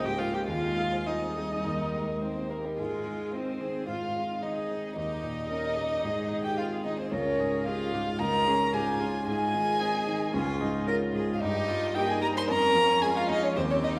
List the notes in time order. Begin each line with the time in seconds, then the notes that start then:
Already playing: C#2 G#3 A#3 F4 G#4 C5
0.03 G#2 G4 G5
0.19 F4 G#4 F5
0.34 F4 G4 G5
0.48 D#2 G#3 F4 G#4 F5
0.63 D#4
0.77 G#4
0.92 C5
1.07 G3 D#4 D#5
1.22 C4
1.36 G#4
1.51 D#4
1.64 D#2 A#4
1.79 D#4
1.93 G#3 G4
2.08 A#4
2.22 A#3 C4 D#4 C5
2.36 A#3
2.50 A#3 G4 A#4
2.64 G3 D#4 G4
2.78 G#2 G#3 F4 G#4
3.06 D#3
3.32 C4 D#4 C5
3.60 D#3 G#4
3.87 G#2 F4 F5
4.15 C4 D#4
4.42 D#3 D#4 G#4 D#5
4.70 C4
4.96 D#2 D#4 G4 D#5
5.23 A#2
5.50 C#4 A#4
5.77 A#2 G4
6.03 G#2 G#4
6.30 D#3 G#4
6.44 G4 G5
6.57 C4 F4 F5
6.84 D#3 D#4 D#5
6.98 C4 C5
7.12 C#2 C#4 F4 A#4 C#5
7.39 G#2 G#4
7.65 C#4 F4 G4 G#4 F5
7.92 G#2 F4 G4
8.19 C#2 D#4 F4 A#4 A#5
8.46 C#4 G#4
8.72 G#2 F4 G4 G#4 G#5
9.00 C#4 F4
9.26 G#2 D#4 F4 G#4 G#5
9.54 D#3
9.80 C4 D#4
10.07 D#3
10.33 C#2 C#4 F4
10.60 G#2 D#4
10.87 C#4 F4 A#4
11.13 G#2 G#4
11.34 F5
11.40 G2 D#4 G4 D#5
11.68 G3 F4
11.95 A#3 D#4 G4 G5
12.08 G#4 G#5
12.21 G3 A#4 A#5
12.34 C5 C6
12.47 F2 C#4 A#4 A#5
12.75 F3
13.02 G#3 F4 G#4 G#5
13.15 F4 F5
13.29 F3 D#4 D#5
13.43 C#4 C#5
13.56 D#2 C4 G4 C5
13.70 C#4 C#5
13.84 D#3 D#4 D#5